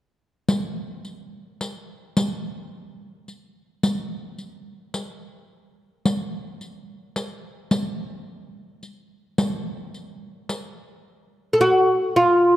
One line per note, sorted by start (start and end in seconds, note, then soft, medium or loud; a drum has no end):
0.48 riq soft
1.05 riq soft
1.61 riq soft
2.17 riq medium
3.28 riq soft
3.83 riq soft
4.38 riq soft
4.94 riq soft
6.05 riq soft
6.61 riq soft
7.16 riq soft
7.71 riq soft
8.83 riq soft
9.38 riq medium
9.94 riq soft
10.49 riq soft
11.53 11.60 A4 medium
11.61 12.16 F#4 medium
12.16 12.56 F4 medium